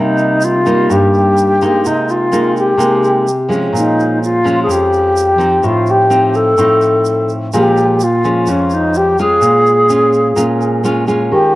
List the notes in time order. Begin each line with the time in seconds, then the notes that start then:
Already playing: C3 G3 A#3 D#4
0.18 shaker
0.41 F4, shaker
0.66 G3 A#3 D#4, shaker
0.90 G2 G4, shaker
1.14 shaker
1.37 shaker
1.61 G#3 A#3 D#4, shaker
1.85 C3 D#4, shaker
2.09 F4, shaker
2.32 G#3 A#3 D#4, shaker
2.57 G4, shaker
2.77 C3 G#3 A#3 D#4, shaker
3.04 shaker
3.28 shaker
3.49 F3 G#3 C#4, shaker
3.73 A#2, shaker
3.77 D#4
4.00 shaker
4.24 F4, shaker
4.44 F3 G#3 C#4, shaker
4.63 G#4
4.67 F2, shaker
4.71 G4
4.93 shaker
5.17 shaker
5.38 F3 C4 D#4, shaker
5.63 A2 F4, shaker
5.87 G4, shaker
6.10 F3 C4 D#4, shaker
6.34 A4, shaker
6.58 A2 F3 C4 D#4, shaker
6.81 shaker
7.05 shaker
7.29 shaker
7.53 A#2 F3 G#3 C#4 G4, shaker
7.77 shaker
8.00 F4, shaker
8.24 F3 G#3 C#4, shaker
8.47 F2 C#4, shaker
8.70 D#4, shaker
8.94 G4, shaker
9.18 G#3 C#4 F4 G#4, shaker
9.41 A#2, shaker
9.66 shaker
9.89 G#3 C#4 F4, shaker
10.13 shaker
10.36 A#2 G#3 C#4 F4, shaker
10.61 shaker
10.84 G#3 C#4 F4, shaker
11.07 G#3 C#4 F4, shaker
11.31 D#3 G4